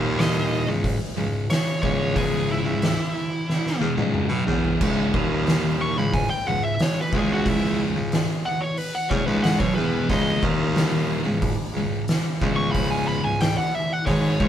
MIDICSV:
0, 0, Header, 1, 5, 480
1, 0, Start_track
1, 0, Key_signature, 4, "minor"
1, 0, Tempo, 661521
1, 1571, Time_signature, 4, 2, 24, 8
1, 10510, End_track
2, 0, Start_track
2, 0, Title_t, "Lead electric guitar"
2, 0, Program_c, 0, 29
2, 137, Note_on_c, 0, 75, 106
2, 483, Note_off_c, 0, 75, 0
2, 1090, Note_on_c, 0, 73, 88
2, 1315, Note_off_c, 0, 73, 0
2, 1324, Note_on_c, 0, 73, 102
2, 1560, Note_off_c, 0, 73, 0
2, 1569, Note_on_c, 0, 68, 102
2, 1803, Note_off_c, 0, 68, 0
2, 1824, Note_on_c, 0, 64, 102
2, 2749, Note_off_c, 0, 64, 0
2, 4219, Note_on_c, 0, 85, 113
2, 4336, Note_off_c, 0, 85, 0
2, 4336, Note_on_c, 0, 83, 86
2, 4454, Note_off_c, 0, 83, 0
2, 4454, Note_on_c, 0, 80, 96
2, 4569, Note_off_c, 0, 80, 0
2, 4571, Note_on_c, 0, 79, 102
2, 4687, Note_off_c, 0, 79, 0
2, 4700, Note_on_c, 0, 78, 88
2, 4812, Note_off_c, 0, 78, 0
2, 4812, Note_on_c, 0, 76, 99
2, 4947, Note_off_c, 0, 76, 0
2, 4947, Note_on_c, 0, 73, 84
2, 5055, Note_off_c, 0, 73, 0
2, 5090, Note_on_c, 0, 71, 95
2, 5208, Note_off_c, 0, 71, 0
2, 5208, Note_on_c, 0, 68, 102
2, 5306, Note_off_c, 0, 68, 0
2, 5320, Note_on_c, 0, 66, 97
2, 5434, Note_off_c, 0, 66, 0
2, 5434, Note_on_c, 0, 64, 117
2, 5655, Note_off_c, 0, 64, 0
2, 6136, Note_on_c, 0, 78, 116
2, 6245, Note_on_c, 0, 73, 89
2, 6250, Note_off_c, 0, 78, 0
2, 6369, Note_off_c, 0, 73, 0
2, 6369, Note_on_c, 0, 71, 106
2, 6486, Note_off_c, 0, 71, 0
2, 6492, Note_on_c, 0, 78, 105
2, 6601, Note_on_c, 0, 73, 90
2, 6608, Note_off_c, 0, 78, 0
2, 6720, Note_off_c, 0, 73, 0
2, 6720, Note_on_c, 0, 71, 98
2, 6841, Note_off_c, 0, 71, 0
2, 6841, Note_on_c, 0, 78, 97
2, 6955, Note_on_c, 0, 73, 93
2, 6962, Note_off_c, 0, 78, 0
2, 7071, Note_off_c, 0, 73, 0
2, 7074, Note_on_c, 0, 71, 103
2, 7314, Note_off_c, 0, 71, 0
2, 7328, Note_on_c, 0, 75, 116
2, 7562, Note_off_c, 0, 75, 0
2, 9116, Note_on_c, 0, 85, 110
2, 9223, Note_off_c, 0, 85, 0
2, 9226, Note_on_c, 0, 83, 87
2, 9363, Note_off_c, 0, 83, 0
2, 9363, Note_on_c, 0, 80, 86
2, 9483, Note_off_c, 0, 80, 0
2, 9489, Note_on_c, 0, 83, 93
2, 9606, Note_off_c, 0, 83, 0
2, 9614, Note_on_c, 0, 80, 82
2, 9729, Note_off_c, 0, 80, 0
2, 9729, Note_on_c, 0, 79, 96
2, 9846, Note_off_c, 0, 79, 0
2, 9850, Note_on_c, 0, 78, 90
2, 9975, Note_off_c, 0, 78, 0
2, 9975, Note_on_c, 0, 76, 89
2, 10106, Note_off_c, 0, 76, 0
2, 10106, Note_on_c, 0, 78, 84
2, 10203, Note_on_c, 0, 73, 111
2, 10215, Note_off_c, 0, 78, 0
2, 10510, Note_off_c, 0, 73, 0
2, 10510, End_track
3, 0, Start_track
3, 0, Title_t, "Distorted electric guitar"
3, 0, Program_c, 1, 30
3, 0, Note_on_c, 1, 39, 96
3, 0, Note_on_c, 1, 46, 89
3, 0, Note_on_c, 1, 51, 105
3, 482, Note_off_c, 1, 39, 0
3, 486, Note_off_c, 1, 46, 0
3, 489, Note_off_c, 1, 51, 0
3, 494, Note_on_c, 1, 37, 72
3, 494, Note_on_c, 1, 44, 85
3, 685, Note_off_c, 1, 37, 0
3, 685, Note_off_c, 1, 44, 0
3, 851, Note_on_c, 1, 37, 65
3, 856, Note_on_c, 1, 44, 76
3, 1043, Note_off_c, 1, 37, 0
3, 1045, Note_off_c, 1, 44, 0
3, 1330, Note_on_c, 1, 37, 93
3, 1334, Note_on_c, 1, 44, 107
3, 1341, Note_on_c, 1, 49, 118
3, 1918, Note_off_c, 1, 37, 0
3, 1918, Note_off_c, 1, 44, 0
3, 1926, Note_on_c, 1, 37, 68
3, 1927, Note_on_c, 1, 44, 75
3, 1928, Note_off_c, 1, 49, 0
3, 2120, Note_off_c, 1, 37, 0
3, 2121, Note_off_c, 1, 44, 0
3, 2764, Note_on_c, 1, 40, 91
3, 2771, Note_on_c, 1, 47, 99
3, 2880, Note_off_c, 1, 40, 0
3, 2884, Note_off_c, 1, 47, 0
3, 2893, Note_on_c, 1, 37, 88
3, 2897, Note_on_c, 1, 44, 104
3, 2902, Note_on_c, 1, 49, 113
3, 3124, Note_off_c, 1, 37, 0
3, 3126, Note_off_c, 1, 44, 0
3, 3129, Note_off_c, 1, 49, 0
3, 3131, Note_on_c, 1, 47, 81
3, 3139, Note_on_c, 1, 54, 92
3, 3239, Note_off_c, 1, 47, 0
3, 3245, Note_off_c, 1, 54, 0
3, 3245, Note_on_c, 1, 40, 96
3, 3248, Note_on_c, 1, 47, 98
3, 3253, Note_on_c, 1, 52, 100
3, 3481, Note_off_c, 1, 40, 0
3, 3482, Note_off_c, 1, 47, 0
3, 3485, Note_off_c, 1, 52, 0
3, 3486, Note_on_c, 1, 37, 94
3, 3493, Note_on_c, 1, 44, 102
3, 3496, Note_on_c, 1, 49, 110
3, 3721, Note_off_c, 1, 37, 0
3, 3724, Note_off_c, 1, 44, 0
3, 3726, Note_off_c, 1, 49, 0
3, 3734, Note_on_c, 1, 39, 99
3, 3737, Note_on_c, 1, 46, 98
3, 3741, Note_on_c, 1, 51, 97
3, 4325, Note_off_c, 1, 39, 0
3, 4326, Note_off_c, 1, 46, 0
3, 4329, Note_off_c, 1, 51, 0
3, 4342, Note_on_c, 1, 37, 64
3, 4347, Note_on_c, 1, 44, 77
3, 4528, Note_off_c, 1, 37, 0
3, 4531, Note_off_c, 1, 44, 0
3, 4708, Note_on_c, 1, 37, 65
3, 4709, Note_on_c, 1, 44, 76
3, 4891, Note_off_c, 1, 37, 0
3, 4892, Note_off_c, 1, 44, 0
3, 5170, Note_on_c, 1, 37, 96
3, 5180, Note_on_c, 1, 44, 95
3, 5183, Note_on_c, 1, 49, 108
3, 5763, Note_off_c, 1, 37, 0
3, 5768, Note_off_c, 1, 44, 0
3, 5770, Note_off_c, 1, 49, 0
3, 5778, Note_on_c, 1, 37, 73
3, 5783, Note_on_c, 1, 44, 78
3, 5966, Note_off_c, 1, 37, 0
3, 5969, Note_off_c, 1, 44, 0
3, 6609, Note_on_c, 1, 40, 102
3, 6617, Note_on_c, 1, 47, 110
3, 6722, Note_off_c, 1, 40, 0
3, 6726, Note_off_c, 1, 47, 0
3, 6732, Note_on_c, 1, 37, 99
3, 6737, Note_on_c, 1, 44, 105
3, 6746, Note_on_c, 1, 49, 98
3, 6964, Note_off_c, 1, 37, 0
3, 6966, Note_off_c, 1, 44, 0
3, 6971, Note_off_c, 1, 49, 0
3, 6971, Note_on_c, 1, 47, 79
3, 6979, Note_on_c, 1, 54, 105
3, 7083, Note_off_c, 1, 47, 0
3, 7087, Note_off_c, 1, 54, 0
3, 7096, Note_on_c, 1, 40, 96
3, 7103, Note_on_c, 1, 47, 114
3, 7107, Note_on_c, 1, 52, 99
3, 7326, Note_off_c, 1, 40, 0
3, 7329, Note_off_c, 1, 47, 0
3, 7331, Note_off_c, 1, 52, 0
3, 7338, Note_on_c, 1, 37, 99
3, 7341, Note_on_c, 1, 44, 96
3, 7348, Note_on_c, 1, 49, 112
3, 7567, Note_off_c, 1, 37, 0
3, 7568, Note_off_c, 1, 44, 0
3, 7572, Note_off_c, 1, 49, 0
3, 7582, Note_on_c, 1, 39, 88
3, 7586, Note_on_c, 1, 46, 101
3, 7591, Note_on_c, 1, 51, 104
3, 8169, Note_off_c, 1, 39, 0
3, 8171, Note_off_c, 1, 46, 0
3, 8172, Note_on_c, 1, 37, 73
3, 8173, Note_off_c, 1, 51, 0
3, 8176, Note_on_c, 1, 44, 74
3, 8363, Note_off_c, 1, 37, 0
3, 8365, Note_off_c, 1, 44, 0
3, 8538, Note_on_c, 1, 37, 64
3, 8539, Note_on_c, 1, 44, 79
3, 8726, Note_off_c, 1, 37, 0
3, 8726, Note_off_c, 1, 44, 0
3, 9017, Note_on_c, 1, 37, 96
3, 9022, Note_on_c, 1, 44, 98
3, 9026, Note_on_c, 1, 49, 110
3, 9602, Note_off_c, 1, 37, 0
3, 9607, Note_off_c, 1, 44, 0
3, 9611, Note_off_c, 1, 49, 0
3, 9611, Note_on_c, 1, 37, 71
3, 9616, Note_on_c, 1, 44, 75
3, 9802, Note_off_c, 1, 37, 0
3, 9805, Note_off_c, 1, 44, 0
3, 10206, Note_on_c, 1, 44, 96
3, 10212, Note_on_c, 1, 51, 114
3, 10218, Note_on_c, 1, 56, 114
3, 10441, Note_off_c, 1, 44, 0
3, 10444, Note_off_c, 1, 51, 0
3, 10447, Note_off_c, 1, 56, 0
3, 10449, Note_on_c, 1, 37, 95
3, 10453, Note_on_c, 1, 44, 106
3, 10510, Note_off_c, 1, 37, 0
3, 10510, Note_off_c, 1, 44, 0
3, 10510, End_track
4, 0, Start_track
4, 0, Title_t, "Baritone saxophone"
4, 0, Program_c, 2, 67
4, 0, Note_on_c, 2, 39, 115
4, 463, Note_off_c, 2, 39, 0
4, 483, Note_on_c, 2, 37, 92
4, 710, Note_off_c, 2, 37, 0
4, 840, Note_on_c, 2, 37, 88
4, 1068, Note_off_c, 2, 37, 0
4, 1326, Note_on_c, 2, 37, 98
4, 1899, Note_off_c, 2, 37, 0
4, 1918, Note_on_c, 2, 37, 92
4, 2147, Note_off_c, 2, 37, 0
4, 2764, Note_on_c, 2, 40, 94
4, 2871, Note_off_c, 2, 40, 0
4, 2875, Note_on_c, 2, 37, 98
4, 3105, Note_off_c, 2, 37, 0
4, 3112, Note_on_c, 2, 47, 110
4, 3232, Note_off_c, 2, 47, 0
4, 3242, Note_on_c, 2, 40, 97
4, 3469, Note_off_c, 2, 40, 0
4, 3490, Note_on_c, 2, 37, 98
4, 3713, Note_off_c, 2, 37, 0
4, 3725, Note_on_c, 2, 39, 107
4, 4299, Note_off_c, 2, 39, 0
4, 4330, Note_on_c, 2, 37, 92
4, 4554, Note_off_c, 2, 37, 0
4, 4685, Note_on_c, 2, 37, 85
4, 4911, Note_off_c, 2, 37, 0
4, 5174, Note_on_c, 2, 37, 103
4, 5743, Note_off_c, 2, 37, 0
4, 5765, Note_on_c, 2, 37, 87
4, 5991, Note_off_c, 2, 37, 0
4, 6606, Note_on_c, 2, 40, 112
4, 6720, Note_off_c, 2, 40, 0
4, 6723, Note_on_c, 2, 37, 106
4, 6950, Note_off_c, 2, 37, 0
4, 6963, Note_on_c, 2, 47, 100
4, 7078, Note_off_c, 2, 47, 0
4, 7085, Note_on_c, 2, 40, 100
4, 7310, Note_off_c, 2, 40, 0
4, 7325, Note_on_c, 2, 37, 108
4, 7550, Note_off_c, 2, 37, 0
4, 7563, Note_on_c, 2, 39, 117
4, 8138, Note_off_c, 2, 39, 0
4, 8151, Note_on_c, 2, 37, 88
4, 8383, Note_off_c, 2, 37, 0
4, 8509, Note_on_c, 2, 37, 81
4, 8742, Note_off_c, 2, 37, 0
4, 9011, Note_on_c, 2, 37, 99
4, 9582, Note_off_c, 2, 37, 0
4, 9600, Note_on_c, 2, 37, 83
4, 9828, Note_off_c, 2, 37, 0
4, 10210, Note_on_c, 2, 44, 98
4, 10433, Note_off_c, 2, 44, 0
4, 10445, Note_on_c, 2, 37, 92
4, 10510, Note_off_c, 2, 37, 0
4, 10510, End_track
5, 0, Start_track
5, 0, Title_t, "Drums"
5, 136, Note_on_c, 9, 46, 76
5, 145, Note_on_c, 9, 38, 118
5, 209, Note_off_c, 9, 46, 0
5, 218, Note_off_c, 9, 38, 0
5, 611, Note_on_c, 9, 36, 100
5, 617, Note_on_c, 9, 46, 63
5, 684, Note_off_c, 9, 36, 0
5, 689, Note_off_c, 9, 46, 0
5, 1090, Note_on_c, 9, 46, 69
5, 1098, Note_on_c, 9, 38, 116
5, 1162, Note_off_c, 9, 46, 0
5, 1171, Note_off_c, 9, 38, 0
5, 1329, Note_on_c, 9, 36, 101
5, 1401, Note_off_c, 9, 36, 0
5, 1568, Note_on_c, 9, 36, 106
5, 1568, Note_on_c, 9, 46, 59
5, 1640, Note_off_c, 9, 36, 0
5, 1640, Note_off_c, 9, 46, 0
5, 2047, Note_on_c, 9, 46, 64
5, 2056, Note_on_c, 9, 38, 121
5, 2120, Note_off_c, 9, 46, 0
5, 2129, Note_off_c, 9, 38, 0
5, 2536, Note_on_c, 9, 38, 70
5, 2609, Note_off_c, 9, 38, 0
5, 2659, Note_on_c, 9, 38, 68
5, 2731, Note_off_c, 9, 38, 0
5, 2889, Note_on_c, 9, 48, 77
5, 2962, Note_off_c, 9, 48, 0
5, 3007, Note_on_c, 9, 47, 91
5, 3079, Note_off_c, 9, 47, 0
5, 3251, Note_on_c, 9, 43, 97
5, 3324, Note_off_c, 9, 43, 0
5, 3370, Note_on_c, 9, 43, 94
5, 3443, Note_off_c, 9, 43, 0
5, 3489, Note_on_c, 9, 49, 98
5, 3490, Note_on_c, 9, 36, 110
5, 3562, Note_off_c, 9, 49, 0
5, 3563, Note_off_c, 9, 36, 0
5, 3730, Note_on_c, 9, 36, 106
5, 3802, Note_off_c, 9, 36, 0
5, 3967, Note_on_c, 9, 46, 72
5, 3976, Note_on_c, 9, 38, 119
5, 4040, Note_off_c, 9, 46, 0
5, 4049, Note_off_c, 9, 38, 0
5, 4452, Note_on_c, 9, 36, 107
5, 4453, Note_on_c, 9, 46, 62
5, 4525, Note_off_c, 9, 36, 0
5, 4525, Note_off_c, 9, 46, 0
5, 4930, Note_on_c, 9, 46, 66
5, 4938, Note_on_c, 9, 38, 117
5, 5002, Note_off_c, 9, 46, 0
5, 5011, Note_off_c, 9, 38, 0
5, 5171, Note_on_c, 9, 36, 107
5, 5244, Note_off_c, 9, 36, 0
5, 5412, Note_on_c, 9, 36, 101
5, 5413, Note_on_c, 9, 46, 58
5, 5485, Note_off_c, 9, 36, 0
5, 5486, Note_off_c, 9, 46, 0
5, 5892, Note_on_c, 9, 46, 69
5, 5901, Note_on_c, 9, 38, 116
5, 5965, Note_off_c, 9, 46, 0
5, 5974, Note_off_c, 9, 38, 0
5, 6367, Note_on_c, 9, 46, 57
5, 6439, Note_off_c, 9, 46, 0
5, 6609, Note_on_c, 9, 36, 110
5, 6682, Note_off_c, 9, 36, 0
5, 6848, Note_on_c, 9, 46, 66
5, 6856, Note_on_c, 9, 38, 125
5, 6920, Note_off_c, 9, 46, 0
5, 6929, Note_off_c, 9, 38, 0
5, 6967, Note_on_c, 9, 36, 116
5, 7039, Note_off_c, 9, 36, 0
5, 7325, Note_on_c, 9, 46, 61
5, 7326, Note_on_c, 9, 36, 114
5, 7398, Note_off_c, 9, 46, 0
5, 7399, Note_off_c, 9, 36, 0
5, 7566, Note_on_c, 9, 36, 116
5, 7639, Note_off_c, 9, 36, 0
5, 7802, Note_on_c, 9, 46, 74
5, 7810, Note_on_c, 9, 38, 114
5, 7874, Note_off_c, 9, 46, 0
5, 7883, Note_off_c, 9, 38, 0
5, 8286, Note_on_c, 9, 46, 62
5, 8287, Note_on_c, 9, 36, 109
5, 8359, Note_off_c, 9, 46, 0
5, 8360, Note_off_c, 9, 36, 0
5, 8765, Note_on_c, 9, 46, 68
5, 8773, Note_on_c, 9, 38, 119
5, 8837, Note_off_c, 9, 46, 0
5, 8846, Note_off_c, 9, 38, 0
5, 9009, Note_on_c, 9, 36, 103
5, 9081, Note_off_c, 9, 36, 0
5, 9249, Note_on_c, 9, 36, 98
5, 9249, Note_on_c, 9, 46, 62
5, 9321, Note_off_c, 9, 46, 0
5, 9322, Note_off_c, 9, 36, 0
5, 9727, Note_on_c, 9, 46, 67
5, 9736, Note_on_c, 9, 38, 120
5, 9800, Note_off_c, 9, 46, 0
5, 9808, Note_off_c, 9, 38, 0
5, 10209, Note_on_c, 9, 36, 100
5, 10212, Note_on_c, 9, 46, 60
5, 10282, Note_off_c, 9, 36, 0
5, 10285, Note_off_c, 9, 46, 0
5, 10450, Note_on_c, 9, 36, 105
5, 10510, Note_off_c, 9, 36, 0
5, 10510, End_track
0, 0, End_of_file